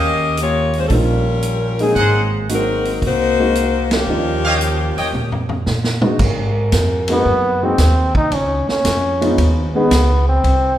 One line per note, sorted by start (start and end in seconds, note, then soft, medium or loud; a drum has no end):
0.00 0.87 D#2 medium
0.00 0.40 C#4 medium
0.00 0.40 G4 medium
0.00 0.40 A#4 medium
0.00 0.40 D#5 loud
0.37 closed hi-hat medium
0.41 0.74 A#3 medium
0.41 0.74 F4 medium
0.41 0.74 G4 medium
0.41 0.74 C#5 medium
0.73 0.87 C#4 medium
0.73 open hi-hat soft
0.78 0.88 G#3 medium
0.78 0.88 F4 medium
0.78 0.88 C5 medium
0.88 1.92 A#1 medium
0.88 1.23 G3 medium
0.88 1.23 A#3 soft
0.88 1.23 C#4 soft
0.88 1.23 D#4 soft
0.88 1.24 F4 medium
0.88 0.92 A4 medium
0.88 kick soft
0.88 open hi-hat soft
0.94 1.82 G3 medium
0.94 1.82 C#4 medium
0.94 1.82 F4 medium
0.94 1.82 A#4 medium
1.42 closed hi-hat medium
1.79 2.33 F#3 medium
1.79 2.46 G#3 medium
1.79 2.47 A#3 medium
1.79 2.46 C4 medium
1.79 2.33 C4 medium
1.79 2.47 D#4 medium
1.79 2.33 D#4 medium
1.79 2.47 G#4 medium
1.79 2.33 G#4 medium
1.79 open hi-hat soft
1.96 2.98 G#1 medium
1.96 2.21 G#4 medium
1.96 2.21 A#4 medium
1.96 2.21 C5 medium
1.96 2.21 F#5 medium
1.96 kick soft
1.96 open hi-hat soft
2.49 3.31 G#3 medium
2.49 3.31 A#3 soft
2.49 3.32 C4 medium
2.49 3.32 D#4 soft
2.49 3.32 F#4 medium
2.49 closed hi-hat medium
2.53 3.01 F#3 medium
2.53 3.01 C4 medium
2.53 3.01 D#4 medium
2.53 3.01 A#4 medium
2.85 open hi-hat soft
3.02 4.04 C2 medium
3.02 3.89 D#4 medium
3.02 3.89 F#4 medium
3.02 kick soft
3.02 open hi-hat soft
3.06 3.89 A#3 loud
3.06 3.89 C5 loud
3.39 3.54 G#3 medium
3.39 3.54 A#3 medium
3.39 3.55 C4 medium
3.39 3.55 D#4 medium
3.39 3.55 F#4 medium
3.55 closed hi-hat medium
3.91 5.69 F3 medium
3.91 5.68 A#3 medium
3.91 5.68 C#4 medium
3.91 5.68 G4 loud
3.91 snare medium
3.91 ride medium
4.07 4.93 D#2 medium
4.07 4.42 G3 medium
4.07 4.42 A#3 soft
4.07 4.42 C#4 soft
4.07 4.42 D#4 medium
4.07 4.42 F4 medium
4.45 4.56 G4 medium
4.45 4.56 C#5 medium
4.45 4.56 D#5 medium
4.45 4.56 F5 loud
4.61 closed hi-hat medium
4.97 5.12 E2 medium
4.97 5.09 G4 medium
4.97 5.09 C#5 medium
4.97 5.09 D#5 medium
4.97 5.09 G5 medium
4.97 open hi-hat soft
5.13 5.63 A#2 medium
5.13 high tom soft
5.32 floor tom soft
5.49 floor tom medium
5.66 6.16 A#2 medium
5.66 snare medium
5.84 snare medium
6.02 6.18 G#3 medium
6.02 6.19 A#3 medium
6.02 6.19 C4 medium
6.02 6.19 D#4 medium
6.02 6.19 F#4 medium
6.02 mid tom medium
6.19 6.71 G#2 medium
6.19 7.70 C3 medium
6.19 7.69 G#3 medium
6.19 7.70 F#4 medium
6.19 7.69 A#4 loud
6.19 kick medium
6.19 crash medium
6.72 7.24 F2 medium
6.72 kick soft
6.72 snare medium
6.72 hi-hat pedal medium
6.72 ride medium
7.08 7.24 G#3 medium
7.08 7.25 A#3 medium
7.08 7.65 B3 medium
7.08 7.24 C4 medium
7.08 7.25 D#4 medium
7.08 7.25 F#4 medium
7.08 ride medium
7.25 7.77 F#2 medium
7.25 kick soft
7.62 7.77 G#3 medium
7.62 7.77 A#3 medium
7.62 7.78 C4 medium
7.62 8.16 C4 medium
7.62 7.78 D#4 medium
7.62 7.78 F#4 medium
7.78 8.30 D#2 medium
7.78 kick soft
7.78 snare medium
7.78 hi-hat pedal medium
7.78 ride medium
8.15 8.36 D#4 loud
8.15 kick medium
8.31 8.65 C#2 medium
8.31 8.70 C#4 medium
8.31 kick soft
8.31 ride medium
8.66 9.35 C#4 medium
8.66 muted upright bass stroke soft
8.66 snare soft
8.84 9.36 F2 medium
8.84 kick soft
8.84 snare medium
8.84 hi-hat pedal medium
8.84 ride medium
9.20 9.88 F3 medium
9.20 9.36 G#3 medium
9.20 9.36 B3 medium
9.20 9.36 C#4 medium
9.20 9.88 C#4 medium
9.20 9.88 D#4 medium
9.20 9.37 D#4 medium
9.20 9.36 F4 medium
9.20 9.88 B4 medium
9.20 ride soft
9.38 9.89 D#2 medium
9.38 kick soft
9.38 ride medium
9.75 9.90 G#3 medium
9.75 9.90 B3 medium
9.75 10.24 B3 medium
9.75 9.90 C#4 medium
9.75 9.90 D#4 medium
9.75 9.90 G#4 medium
9.90 10.42 C#2 medium
9.90 kick soft
9.90 snare medium
9.90 hi-hat pedal medium
9.90 ride medium
10.29 10.77 C4 medium
10.44 10.78 C2 medium
10.44 kick soft
10.44 ride medium